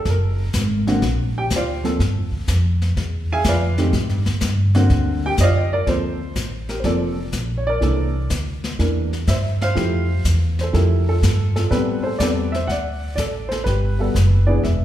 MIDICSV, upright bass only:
0, 0, Header, 1, 2, 480
1, 0, Start_track
1, 0, Key_signature, -2, "minor"
1, 0, Tempo, 485830
1, 57, Time_signature, 4, 2, 24, 8
1, 14669, End_track
2, 0, Start_track
2, 0, Title_t, "Upright bass"
2, 0, Program_c, 0, 32
2, 53, Note_on_c, 0, 30, 86
2, 520, Note_off_c, 0, 30, 0
2, 530, Note_on_c, 0, 32, 91
2, 998, Note_off_c, 0, 32, 0
2, 1012, Note_on_c, 0, 34, 83
2, 1478, Note_off_c, 0, 34, 0
2, 1490, Note_on_c, 0, 38, 84
2, 1957, Note_off_c, 0, 38, 0
2, 1970, Note_on_c, 0, 43, 88
2, 2124, Note_on_c, 0, 41, 58
2, 2139, Note_off_c, 0, 43, 0
2, 2280, Note_off_c, 0, 41, 0
2, 2286, Note_on_c, 0, 38, 67
2, 2437, Note_off_c, 0, 38, 0
2, 2447, Note_on_c, 0, 41, 88
2, 2914, Note_off_c, 0, 41, 0
2, 2928, Note_on_c, 0, 40, 89
2, 3394, Note_off_c, 0, 40, 0
2, 3403, Note_on_c, 0, 41, 87
2, 3871, Note_off_c, 0, 41, 0
2, 3883, Note_on_c, 0, 45, 85
2, 4045, Note_off_c, 0, 45, 0
2, 4045, Note_on_c, 0, 43, 61
2, 4205, Note_off_c, 0, 43, 0
2, 4211, Note_on_c, 0, 39, 69
2, 4356, Note_off_c, 0, 39, 0
2, 4362, Note_on_c, 0, 43, 93
2, 4830, Note_off_c, 0, 43, 0
2, 4838, Note_on_c, 0, 38, 89
2, 5308, Note_off_c, 0, 38, 0
2, 5314, Note_on_c, 0, 42, 83
2, 5785, Note_off_c, 0, 42, 0
2, 5800, Note_on_c, 0, 38, 77
2, 6268, Note_off_c, 0, 38, 0
2, 6279, Note_on_c, 0, 33, 78
2, 6748, Note_off_c, 0, 33, 0
2, 6757, Note_on_c, 0, 29, 78
2, 7227, Note_off_c, 0, 29, 0
2, 7235, Note_on_c, 0, 34, 77
2, 7706, Note_off_c, 0, 34, 0
2, 7724, Note_on_c, 0, 36, 76
2, 8191, Note_off_c, 0, 36, 0
2, 8202, Note_on_c, 0, 38, 89
2, 8670, Note_off_c, 0, 38, 0
2, 8684, Note_on_c, 0, 40, 83
2, 9151, Note_off_c, 0, 40, 0
2, 9163, Note_on_c, 0, 43, 80
2, 9630, Note_off_c, 0, 43, 0
2, 9647, Note_on_c, 0, 41, 81
2, 10113, Note_off_c, 0, 41, 0
2, 10123, Note_on_c, 0, 40, 86
2, 10591, Note_off_c, 0, 40, 0
2, 10608, Note_on_c, 0, 41, 80
2, 11074, Note_off_c, 0, 41, 0
2, 11087, Note_on_c, 0, 43, 83
2, 11553, Note_off_c, 0, 43, 0
2, 11569, Note_on_c, 0, 45, 82
2, 12035, Note_off_c, 0, 45, 0
2, 12054, Note_on_c, 0, 40, 80
2, 12519, Note_off_c, 0, 40, 0
2, 12535, Note_on_c, 0, 38, 79
2, 12999, Note_off_c, 0, 38, 0
2, 13012, Note_on_c, 0, 33, 76
2, 13478, Note_off_c, 0, 33, 0
2, 13494, Note_on_c, 0, 31, 82
2, 13960, Note_off_c, 0, 31, 0
2, 13978, Note_on_c, 0, 30, 82
2, 14443, Note_off_c, 0, 30, 0
2, 14458, Note_on_c, 0, 28, 79
2, 14669, Note_off_c, 0, 28, 0
2, 14669, End_track
0, 0, End_of_file